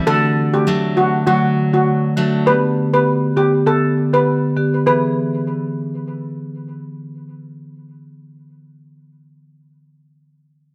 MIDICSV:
0, 0, Header, 1, 4, 480
1, 0, Start_track
1, 0, Tempo, 600000
1, 55, Time_signature, 4, 2, 24, 8
1, 8598, End_track
2, 0, Start_track
2, 0, Title_t, "Steel pan"
2, 0, Program_c, 0, 114
2, 55, Note_on_c, 0, 69, 105
2, 152, Note_off_c, 0, 69, 0
2, 429, Note_on_c, 0, 67, 82
2, 506, Note_off_c, 0, 67, 0
2, 776, Note_on_c, 0, 66, 80
2, 873, Note_off_c, 0, 66, 0
2, 1014, Note_on_c, 0, 66, 89
2, 1112, Note_off_c, 0, 66, 0
2, 1388, Note_on_c, 0, 66, 75
2, 1465, Note_off_c, 0, 66, 0
2, 1975, Note_on_c, 0, 71, 98
2, 2073, Note_off_c, 0, 71, 0
2, 2349, Note_on_c, 0, 71, 76
2, 2426, Note_off_c, 0, 71, 0
2, 2695, Note_on_c, 0, 67, 78
2, 2792, Note_off_c, 0, 67, 0
2, 2934, Note_on_c, 0, 69, 81
2, 3031, Note_off_c, 0, 69, 0
2, 3309, Note_on_c, 0, 71, 79
2, 3386, Note_off_c, 0, 71, 0
2, 3894, Note_on_c, 0, 71, 86
2, 5302, Note_off_c, 0, 71, 0
2, 8598, End_track
3, 0, Start_track
3, 0, Title_t, "Marimba"
3, 0, Program_c, 1, 12
3, 53, Note_on_c, 1, 50, 99
3, 56, Note_on_c, 1, 57, 86
3, 59, Note_on_c, 1, 66, 106
3, 396, Note_off_c, 1, 50, 0
3, 398, Note_off_c, 1, 57, 0
3, 399, Note_off_c, 1, 66, 0
3, 428, Note_on_c, 1, 50, 81
3, 431, Note_on_c, 1, 57, 74
3, 433, Note_on_c, 1, 66, 88
3, 566, Note_off_c, 1, 50, 0
3, 568, Note_off_c, 1, 57, 0
3, 569, Note_off_c, 1, 66, 0
3, 775, Note_on_c, 1, 50, 80
3, 777, Note_on_c, 1, 57, 72
3, 779, Note_on_c, 1, 66, 85
3, 934, Note_off_c, 1, 50, 0
3, 935, Note_off_c, 1, 57, 0
3, 937, Note_off_c, 1, 66, 0
3, 1013, Note_on_c, 1, 50, 95
3, 1016, Note_on_c, 1, 57, 90
3, 1018, Note_on_c, 1, 66, 108
3, 1174, Note_off_c, 1, 50, 0
3, 1175, Note_off_c, 1, 57, 0
3, 1176, Note_off_c, 1, 66, 0
3, 1387, Note_on_c, 1, 50, 81
3, 1389, Note_on_c, 1, 57, 74
3, 1392, Note_on_c, 1, 66, 87
3, 1526, Note_off_c, 1, 50, 0
3, 1527, Note_off_c, 1, 57, 0
3, 1528, Note_off_c, 1, 66, 0
3, 1733, Note_on_c, 1, 50, 82
3, 1735, Note_on_c, 1, 57, 72
3, 1738, Note_on_c, 1, 66, 88
3, 1893, Note_off_c, 1, 50, 0
3, 1895, Note_off_c, 1, 57, 0
3, 1896, Note_off_c, 1, 66, 0
3, 1972, Note_on_c, 1, 50, 100
3, 1975, Note_on_c, 1, 59, 90
3, 1977, Note_on_c, 1, 67, 101
3, 2316, Note_off_c, 1, 50, 0
3, 2317, Note_off_c, 1, 59, 0
3, 2318, Note_off_c, 1, 67, 0
3, 2348, Note_on_c, 1, 50, 80
3, 2351, Note_on_c, 1, 59, 71
3, 2353, Note_on_c, 1, 67, 87
3, 2486, Note_off_c, 1, 50, 0
3, 2488, Note_off_c, 1, 59, 0
3, 2489, Note_off_c, 1, 67, 0
3, 2693, Note_on_c, 1, 50, 82
3, 2696, Note_on_c, 1, 59, 72
3, 2699, Note_on_c, 1, 67, 86
3, 2854, Note_off_c, 1, 50, 0
3, 2855, Note_off_c, 1, 59, 0
3, 2856, Note_off_c, 1, 67, 0
3, 2933, Note_on_c, 1, 50, 99
3, 2935, Note_on_c, 1, 59, 89
3, 2938, Note_on_c, 1, 67, 109
3, 3093, Note_off_c, 1, 50, 0
3, 3095, Note_off_c, 1, 59, 0
3, 3096, Note_off_c, 1, 67, 0
3, 3308, Note_on_c, 1, 50, 81
3, 3310, Note_on_c, 1, 59, 74
3, 3312, Note_on_c, 1, 67, 87
3, 3446, Note_off_c, 1, 50, 0
3, 3447, Note_off_c, 1, 59, 0
3, 3449, Note_off_c, 1, 67, 0
3, 3652, Note_on_c, 1, 50, 76
3, 3655, Note_on_c, 1, 59, 71
3, 3657, Note_on_c, 1, 67, 85
3, 3813, Note_off_c, 1, 50, 0
3, 3814, Note_off_c, 1, 59, 0
3, 3816, Note_off_c, 1, 67, 0
3, 3891, Note_on_c, 1, 52, 86
3, 3895, Note_on_c, 1, 59, 77
3, 3899, Note_on_c, 1, 68, 97
3, 6981, Note_off_c, 1, 52, 0
3, 6983, Note_off_c, 1, 59, 0
3, 6985, Note_off_c, 1, 68, 0
3, 8598, End_track
4, 0, Start_track
4, 0, Title_t, "Nylon-string guitar"
4, 0, Program_c, 2, 24
4, 0, Note_on_c, 2, 55, 67
4, 0, Note_on_c, 2, 60, 60
4, 56, Note_on_c, 2, 50, 83
4, 61, Note_on_c, 2, 62, 70
4, 109, Note_off_c, 2, 55, 0
4, 111, Note_off_c, 2, 60, 0
4, 535, Note_on_c, 2, 54, 67
4, 540, Note_on_c, 2, 57, 68
4, 541, Note_off_c, 2, 62, 0
4, 545, Note_on_c, 2, 62, 73
4, 1006, Note_off_c, 2, 54, 0
4, 1016, Note_on_c, 2, 54, 70
4, 1726, Note_off_c, 2, 54, 0
4, 1731, Note_off_c, 2, 57, 0
4, 1735, Note_on_c, 2, 54, 65
4, 1740, Note_on_c, 2, 57, 62
4, 1742, Note_off_c, 2, 62, 0
4, 1745, Note_on_c, 2, 62, 67
4, 2029, Note_off_c, 2, 54, 0
4, 2031, Note_off_c, 2, 57, 0
4, 2434, Note_off_c, 2, 50, 0
4, 2434, Note_off_c, 2, 62, 0
4, 8598, End_track
0, 0, End_of_file